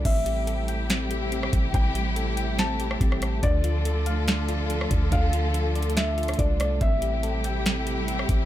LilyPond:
<<
  \new Staff \with { instrumentName = "Felt piano" } { \time 4/4 \key a \minor \tempo 4 = 142 e''1 | g''4 r4 a''2 | d''1 | f''4 r4 e''4 d''8 d''8 |
e''1 | }
  \new Staff \with { instrumentName = "Synth keys" } { \time 4/4 \key a \minor c'8 g'8 a'8 g''8 c'8 g'8 c'4 | c'8 g'8 a'8 g''8 c'8 g'8 c'4 | d'8 f'8 a'8 f''8 d'8 f'8 d'4 | d'8 f'8 a'8 d''8 d'8 f'8 d'4 |
c'8 g'8 a'8 g''8 c'8 g'8 c'4 | }
  \new Staff \with { instrumentName = "String section" } { \time 4/4 \key a \minor << { <c g e' g'>1~ | <c g e' g'>1 | <d f f' a'>1~ | <d f f' a'>1 |
<c g e' g'>1 | } \\ { a1~ | a1~ | a1~ | a1~ |
a1 | } >> }
  \new Staff \with { instrumentName = "808-style bass" } { \clef bass \time 4/4 \key a \minor a,,2.~ a,,8 a,,8 | a,,2. a,,4 | d,2.~ d,8 d,8 | d,2. c,4 |
a,,2.~ a,,8 a,,8 | }
  \new DrumStaff \with { instrumentName = "Drums" } \drummode { \time 4/4 <cymc hh bd>8 hh8 hh8 hh8 <hh sn>8 hh8 hh16 ss16 <hh bd>8 | <hh bd>8 hh8 hh8 hh8 <hh sn>8 hh16 ss16 <hh bd>16 ss16 <hh ss>8 | <hh bd>8 hh8 hh8 hh8 <hh sn>8 hh8 hh16 ss16 <hh bd>8 | <hh bd>8 hh8 \tuplet 3/2 { hh16 r16 r16 hh16 hh16 hh16 } <hh sn>8 hh32 hh32 <hh ss>32 hh32 <hh bd>8 <hh ss>8 |
<hh bd>8 hh8 hh8 hh8 <hh sn>8 hh8 hh16 ss16 <hh bd>8 | }
>>